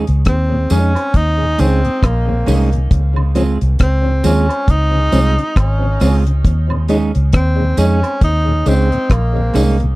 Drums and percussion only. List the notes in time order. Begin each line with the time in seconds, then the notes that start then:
0.07 closed hi-hat
0.25 kick, cross-stick, closed hi-hat
0.70 cross-stick, closed hi-hat, tambourine
0.95 closed hi-hat, high woodblock
1.14 kick, closed hi-hat
1.58 closed hi-hat, tambourine
1.85 closed hi-hat
2.03 kick, cross-stick, closed hi-hat, high woodblock
2.46 open hi-hat, tambourine
2.73 closed hi-hat
2.91 kick, closed hi-hat
3.16 high woodblock
3.35 closed hi-hat, tambourine
3.61 closed hi-hat
3.79 kick, cross-stick, closed hi-hat
4.24 closed hi-hat, tambourine
4.49 closed hi-hat, high woodblock
4.68 kick, closed hi-hat
5.12 closed hi-hat, tambourine
5.38 closed hi-hat
5.56 kick, cross-stick, closed hi-hat, high woodblock
6.00 cross-stick, open hi-hat, tambourine
6.27 closed hi-hat
6.45 kick, closed hi-hat
6.70 high woodblock
6.88 closed hi-hat, tambourine
7.15 closed hi-hat
7.33 kick, cross-stick, closed hi-hat
7.77 closed hi-hat, tambourine
8.03 closed hi-hat, high woodblock
8.21 kick, closed hi-hat
8.66 closed hi-hat, tambourine
8.92 closed hi-hat
9.10 kick, cross-stick, closed hi-hat, high woodblock
9.54 cross-stick, open hi-hat, tambourine
9.80 closed hi-hat